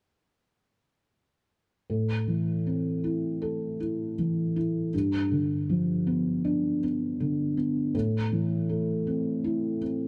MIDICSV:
0, 0, Header, 1, 2, 480
1, 0, Start_track
1, 0, Key_signature, 0, "minor"
1, 0, Tempo, 765306
1, 1186, Time_signature, 4, 2, 24, 8
1, 2623, Tempo, 750939
1, 6392, End_track
2, 0, Start_track
2, 0, Title_t, "Felt piano"
2, 0, Program_c, 0, 0
2, 1190, Note_on_c, 0, 45, 45
2, 1297, Control_c, 0, 64, 127
2, 1427, Note_on_c, 0, 52, 32
2, 1672, Note_on_c, 0, 60, 37
2, 1906, Note_on_c, 0, 64, 34
2, 2143, Note_on_c, 0, 69, 38
2, 2359, Note_off_c, 0, 52, 0
2, 2375, Note_off_c, 0, 64, 0
2, 2385, Note_on_c, 0, 64, 36
2, 2599, Note_off_c, 0, 60, 0
2, 2625, Note_on_c, 0, 52, 37
2, 2856, Note_off_c, 0, 64, 0
2, 2866, Note_on_c, 0, 64, 37
2, 3077, Note_off_c, 0, 69, 0
2, 3080, Note_off_c, 0, 45, 0
2, 3091, Note_off_c, 0, 52, 0
2, 3098, Note_off_c, 0, 64, 0
2, 3106, Note_on_c, 0, 43, 45
2, 3112, Control_c, 0, 64, 0
2, 3210, Control_c, 0, 64, 127
2, 3347, Note_on_c, 0, 50, 36
2, 3590, Note_on_c, 0, 53, 40
2, 3828, Note_on_c, 0, 59, 37
2, 4070, Note_on_c, 0, 62, 43
2, 4284, Note_off_c, 0, 50, 0
2, 4308, Note_off_c, 0, 59, 0
2, 4318, Note_on_c, 0, 59, 40
2, 4524, Note_off_c, 0, 53, 0
2, 4554, Note_on_c, 0, 50, 41
2, 4781, Note_off_c, 0, 59, 0
2, 4790, Note_on_c, 0, 59, 36
2, 5001, Note_off_c, 0, 43, 0
2, 5001, Note_off_c, 0, 62, 0
2, 5015, Note_off_c, 0, 50, 0
2, 5021, Note_off_c, 0, 59, 0
2, 5029, Note_on_c, 0, 45, 55
2, 5035, Control_c, 0, 64, 0
2, 5160, Control_c, 0, 64, 127
2, 5268, Note_on_c, 0, 52, 39
2, 5507, Note_on_c, 0, 57, 42
2, 5746, Note_on_c, 0, 60, 38
2, 5986, Note_on_c, 0, 64, 43
2, 6197, Note_off_c, 0, 52, 0
2, 6213, Note_off_c, 0, 60, 0
2, 6223, Note_on_c, 0, 60, 39
2, 6392, Note_off_c, 0, 45, 0
2, 6392, Note_off_c, 0, 57, 0
2, 6392, Note_off_c, 0, 60, 0
2, 6392, Note_off_c, 0, 64, 0
2, 6392, End_track
0, 0, End_of_file